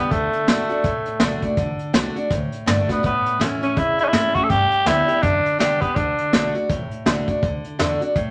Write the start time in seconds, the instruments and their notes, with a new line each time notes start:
Already playing: steel-string acoustic guitar B3 G4
0.05 tenor saxophone B3
0.11 upright bass D2, steel-string acoustic guitar D3, tenor saxophone A3, kick, closed hi-hat
0.33 muted upright bass stroke, closed hi-hat
0.47 upright bass G1, steel-string acoustic guitar D3 A3 D4 F#4, snare, closed hi-hat
0.69 steel-string acoustic guitar D4 F#4, muted upright bass stroke, closed hi-hat
0.84 upright bass A1, steel-string acoustic guitar A2, kick, closed hi-hat
1.05 muted upright bass stroke, closed hi-hat
1.20 upright bass B1, steel-string acoustic guitar D3 A3 D4 F#4, snare, closed hi-hat
1.42 steel-string acoustic guitar D4 F#4, muted upright bass stroke, kick, closed hi-hat
1.57 upright bass A1, steel-string acoustic guitar D3, kick, closed hi-hat
1.79 muted upright bass stroke, closed hi-hat
1.93 upright bass C2, steel-string acoustic guitar D3 A3 D4 F#4, snare, closed hi-hat
2.15 steel-string acoustic guitar D4 F#4, muted upright bass stroke, closed hi-hat
2.31 upright bass D2, steel-string acoustic guitar A2, kick, closed hi-hat
2.52 muted upright bass stroke, closed hi-hat
2.66 upright bass G2, steel-string acoustic guitar D3 A3 D4 F#4, snare, closed hi-hat
2.89 tenor saxophone B3, steel-string acoustic guitar D4 F#4, muted upright bass stroke, kick, snare, closed hi-hat
3.03 steel-string acoustic guitar A2, upright bass A2, tenor saxophone B3, kick, closed hi-hat
3.25 muted upright bass stroke, closed hi-hat
3.39 upright bass B2, steel-string acoustic guitar E3 A3 C#4 E4, snare, closed hi-hat
3.61 steel-string acoustic guitar C#4 E4, tenor saxophone C#4, muted upright bass stroke, closed hi-hat
3.77 steel-string acoustic guitar E2, upright bass C#3, tenor saxophone E4, kick, closed hi-hat
3.98 tenor saxophone E4, muted upright bass stroke, closed hi-hat
4.04 tenor saxophone C#4
4.08 tenor saxophone E4
4.13 upright bass A2, steel-string acoustic guitar E3 A3 C#4 E4, snare, closed hi-hat
4.34 steel-string acoustic guitar C#4 E4, tenor saxophone F#4, muted upright bass stroke, kick, closed hi-hat
4.44 tenor saxophone A4
4.50 steel-string acoustic guitar G2, upright bass G2, tenor saxophone G4, kick, closed hi-hat
4.71 muted upright bass stroke, closed hi-hat
4.85 upright bass D2, steel-string acoustic guitar D3 G3 B3 G4, tenor saxophone E4, snare, closed hi-hat
5.08 steel-string acoustic guitar B3 G4, muted upright bass stroke, closed hi-hat
5.22 upright bass F#2, steel-string acoustic guitar D3, tenor saxophone D4, kick, closed hi-hat
5.45 muted upright bass stroke, closed hi-hat
5.59 upright bass E2, steel-string acoustic guitar D3 G3 B3 G4, tenor saxophone D4, snare, closed hi-hat
5.81 tenor saxophone B3, steel-string acoustic guitar B3 G4, kick, closed hi-hat
5.95 upright bass D2, steel-string acoustic guitar D3, tenor saxophone D4, kick, closed hi-hat
6.18 muted upright bass stroke, closed hi-hat
6.33 upright bass B1, steel-string acoustic guitar D3 A3 D4 F#4, snare, closed hi-hat
6.54 steel-string acoustic guitar D4 F#4, muted upright bass stroke, closed hi-hat
6.70 upright bass A1, steel-string acoustic guitar A2, kick, closed hi-hat
6.91 muted upright bass stroke, closed hi-hat
7.05 upright bass C2, steel-string acoustic guitar D3 A3 D4 F#4, snare, closed hi-hat
7.27 steel-string acoustic guitar D4 F#4, kick, closed hi-hat
7.43 upright bass D2, steel-string acoustic guitar D3, kick, closed hi-hat
7.64 muted upright bass stroke, closed hi-hat
7.79 upright bass E2, steel-string acoustic guitar D3 A3 D4 F#4, snare, closed hi-hat
8.00 steel-string acoustic guitar D4 F#4, muted upright bass stroke, closed hi-hat
8.16 upright bass F#2, steel-string acoustic guitar A2, kick, closed hi-hat